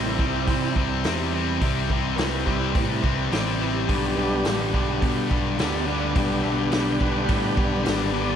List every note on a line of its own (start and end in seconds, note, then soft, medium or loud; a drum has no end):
0.00 0.18 A1 medium
0.00 0.17 C3 medium
0.00 0.18 C3 medium
0.00 0.18 E3 medium
0.00 0.19 G3 medium
0.00 0.19 C4 medium
0.00 0.74 C4 medium
0.00 0.19 E4 medium
0.00 0.75 E4 loud
0.00 0.20 C5 medium
0.18 0.46 C2 medium
0.18 0.46 C3 medium
0.18 0.46 E3 medium
0.18 0.48 G3 medium
0.18 0.47 G3 medium
0.18 0.47 C4 medium
0.18 0.48 E4 medium
0.18 0.48 C5 medium
0.18 kick medium
0.47 0.75 C3 medium
0.47 0.75 C3 loud
0.47 0.75 C3 medium
0.47 0.76 E3 medium
0.47 0.76 G3 loud
0.47 0.77 G3 medium
0.47 0.77 C4 medium
0.47 0.76 C4 loud
0.47 0.77 E4 loud
0.47 0.77 C5 loud
0.47 kick loud
0.47 open hi-hat medium
0.76 1.03 C2 medium
0.76 1.05 C3 medium
0.76 1.04 C3 medium
0.76 1.04 E3 medium
0.76 1.06 G3 medium
0.76 1.05 G3 medium
0.76 1.06 C4 medium
0.76 1.05 C4 medium
0.76 1.05 E4 medium
0.76 1.05 C5 medium
0.76 kick medium
1.04 1.59 E2 medium
1.04 1.33 C3 medium
1.04 1.32 C3 medium
1.04 1.34 E3 medium
1.04 1.31 G3 soft
1.04 1.34 G3 medium
1.04 1.31 C4 soft
1.04 1.34 C4 loud
1.04 1.30 E4 soft
1.04 1.34 E4 loud
1.04 1.34 C5 loud
1.04 snare loud
1.04 open hi-hat medium
1.34 1.60 C3 medium
1.34 1.61 C3 medium
1.34 1.62 E3 medium
1.34 1.62 G3 medium
1.34 1.63 G3 medium
1.34 1.62 C4 medium
1.34 1.63 C4 medium
1.34 1.63 E4 medium
1.34 1.64 C5 medium
1.61 1.89 C2 medium
1.61 1.88 C3 medium
1.61 1.90 C3 medium
1.61 1.91 E3 medium
1.61 1.90 G3 medium
1.61 1.92 G3 loud
1.61 1.90 C4 medium
1.61 1.91 C4 loud
1.61 1.91 E4 loud
1.61 1.92 C5 loud
1.61 kick loud
1.61 open hi-hat medium
1.90 2.18 C2 medium
1.90 2.17 C3 medium
1.90 2.18 C3 medium
1.90 2.19 E3 medium
1.90 2.18 G3 medium
1.90 2.20 G3 medium
1.90 2.18 C4 medium
1.90 2.20 C4 medium
1.90 2.19 E4 medium
1.90 2.20 C5 medium
1.90 kick medium
2.15 2.46 C2 medium
2.15 2.45 C3 medium
2.15 2.46 G3 medium
2.15 2.46 C4 medium
2.15 2.19 A#4 medium
2.15 snare loud
2.15 open hi-hat medium
2.19 2.45 C3 medium
2.19 2.46 E3 medium
2.19 2.48 G3 medium
2.19 2.47 C4 medium
2.19 2.47 E4 medium
2.19 3.30 B4 loud
2.19 2.48 C5 medium
2.46 2.74 C2 medium
2.46 2.73 C3 medium
2.46 2.74 C3 medium
2.46 2.74 E3 medium
2.46 2.84 G3 medium
2.46 2.74 G3 loud
2.46 2.76 G3 medium
2.46 2.85 C4 soft
2.46 2.74 C4 loud
2.46 2.76 C4 medium
2.46 2.85 E4 medium
2.46 2.76 E4 medium
2.46 2.77 C5 medium
2.46 kick medium
2.74 3.03 A2 loud
2.74 3.01 C3 loud
2.74 3.04 C3 medium
2.74 3.04 E3 medium
2.74 3.02 G3 loud
2.74 3.05 G3 medium
2.74 3.02 C4 loud
2.74 3.05 C4 loud
2.74 3.05 E4 medium
2.74 kick loud
2.74 open hi-hat medium
2.78 3.06 C5 loud
3.02 3.31 C2 medium
3.02 3.30 C3 medium
3.02 3.32 C3 medium
3.02 3.33 E3 medium
3.02 3.31 G3 medium
3.02 3.34 G3 medium
3.02 3.31 C4 medium
3.02 kick medium
3.06 3.33 C4 loud
3.06 3.34 E4 medium
3.06 3.34 C5 medium
3.31 3.86 A1 medium
3.31 3.58 C3 medium
3.31 3.59 C3 medium
3.31 3.60 E3 medium
3.31 3.60 G3 medium
3.31 3.61 G3 medium
3.31 3.60 C4 loud
3.31 3.61 C4 medium
3.31 3.61 E4 medium
3.31 3.60 D5 medium
3.31 snare loud
3.31 open hi-hat medium
3.35 3.61 C5 loud
3.60 3.87 C3 medium
3.60 3.88 C3 medium
3.60 3.88 E3 medium
3.60 3.88 G3 medium
3.60 3.88 C4 medium
3.60 3.89 E4 medium
3.60 3.74 B4 medium
3.60 3.88 C5 medium
3.75 4.17 G4 loud
3.88 4.16 B1 medium
3.88 4.15 G2 medium
3.88 4.15 D3 loud
3.88 4.16 G3 medium
3.88 4.17 B3 loud
3.88 4.18 D4 loud
3.88 4.19 G4 medium
3.88 4.19 B4 loud
3.88 kick loud
3.88 open hi-hat medium
4.16 4.44 B1 medium
4.16 4.43 G2 medium
4.16 4.43 D3 medium
4.16 4.55 G3 medium
4.16 4.45 G3 medium
4.16 4.55 B3 soft
4.16 4.45 B3 medium
4.16 4.56 D4 medium
4.16 4.45 D4 medium
4.16 5.28 G4 loud
4.16 4.46 G4 medium
4.16 4.46 B4 medium
4.44 4.73 A1 medium
4.44 4.73 G2 medium
4.44 4.73 D3 medium
4.44 4.74 G3 medium
4.44 4.73 B3 medium
4.44 4.74 D4 medium
4.44 4.75 G4 medium
4.44 4.75 B4 medium
4.44 snare loud
4.44 open hi-hat medium
4.73 5.01 B1 medium
4.73 5.00 G2 medium
4.73 5.01 D3 medium
4.73 5.01 G3 medium
4.73 5.00 B3 medium
4.73 5.02 D4 medium
4.73 5.02 G4 medium
4.73 5.02 B4 medium
4.73 kick medium
5.01 5.29 G2 medium
5.01 5.30 B2 medium
5.01 5.29 D3 medium
5.01 5.30 G3 loud
5.01 5.30 B3 medium
5.01 5.31 D4 medium
5.01 5.30 G4 loud
5.01 5.31 B4 medium
5.01 kick loud
5.01 open hi-hat medium
5.30 5.58 B1 medium
5.30 5.57 G2 medium
5.30 5.58 D3 medium
5.30 5.59 G3 loud
5.30 5.58 B3 medium
5.30 5.59 D4 medium
5.30 5.59 G4 medium
5.30 5.59 B4 loud
5.30 kick medium
5.59 6.14 D2 medium
5.59 5.85 G2 medium
5.59 5.85 D3 medium
5.59 5.85 G3 soft
5.59 5.86 G3 loud
5.59 5.86 B3 medium
5.59 5.86 B3 soft
5.59 5.87 D4 medium
5.59 5.86 D4 soft
5.59 5.87 G4 medium
5.59 5.87 B4 medium
5.59 snare loud
5.59 open hi-hat medium
5.86 6.13 G2 medium
5.86 6.14 D3 medium
5.86 6.15 G3 medium
5.86 6.15 B3 medium
5.86 6.16 D4 medium
5.86 6.16 G4 medium
5.86 6.17 B4 medium
5.86 6.16 D5 medium
6.14 6.43 B1 medium
6.14 6.41 G2 medium
6.14 6.41 D3 medium
6.14 6.42 G3 loud
6.14 8.36 G3 medium
6.14 6.43 B3 medium
6.14 8.36 B3 medium
6.14 6.44 D4 loud
6.14 8.36 D4 medium
6.14 6.44 G4 loud
6.14 6.44 B4 loud
6.14 kick loud
6.14 open hi-hat medium
6.19 6.45 G5 medium
6.43 6.72 B1 medium
6.43 6.69 G2 medium
6.43 6.70 D3 medium
6.43 6.71 G3 medium
6.43 6.71 B3 medium
6.43 6.72 D4 medium
6.43 6.72 G4 medium
6.43 6.72 B4 medium
6.43 6.57 E5 loud
6.54 6.58 F#5 medium
6.54 6.99 G5 medium
6.71 7.00 B1 medium
6.71 6.98 G2 medium
6.71 6.98 D3 loud
6.71 6.99 G3 medium
6.71 6.99 B3 medium
6.71 7.01 D4 medium
6.71 7.00 G4 medium
6.71 7.01 B4 loud
6.71 snare loud
6.71 open hi-hat medium
6.99 7.28 B1 medium
6.99 7.26 G2 medium
6.99 7.26 D3 medium
6.99 7.27 G3 loud
6.99 7.28 B3 medium
6.99 7.29 D4 medium
6.99 7.29 G4 medium
6.99 7.53 B4 medium
6.99 7.30 B4 medium
6.99 7.56 G5 medium
6.99 kick medium
7.27 7.54 G2 loud
7.27 7.56 A2 medium
7.27 7.55 D3 loud
7.27 7.55 G3 loud
7.27 7.55 B3 medium
7.27 7.57 D4 medium
7.27 7.56 G4 medium
7.27 7.57 B4 loud
7.27 kick loud
7.27 open hi-hat medium
7.55 7.84 B1 medium
7.55 7.82 G2 medium
7.55 7.83 D3 medium
7.55 7.84 G3 loud
7.55 7.85 B3 medium
7.55 7.85 D4 medium
7.55 7.85 G4 medium
7.55 7.86 B4 loud
7.55 kick loud
7.84 8.36 G#1 medium
7.84 8.11 G2 medium
7.84 8.12 D3 medium
7.84 8.12 G3 loud
7.84 8.12 B3 medium
7.84 8.13 D4 medium
7.84 8.12 G4 medium
7.84 8.13 B4 loud
7.84 snare loud
7.84 open hi-hat medium
8.12 8.36 G2 medium
8.12 8.36 D3 loud
8.12 8.36 G3 medium
8.12 8.36 B3 medium
8.12 8.36 D4 medium
8.12 8.36 G4 medium
8.12 8.36 B4 medium
8.12 8.36 D5 loud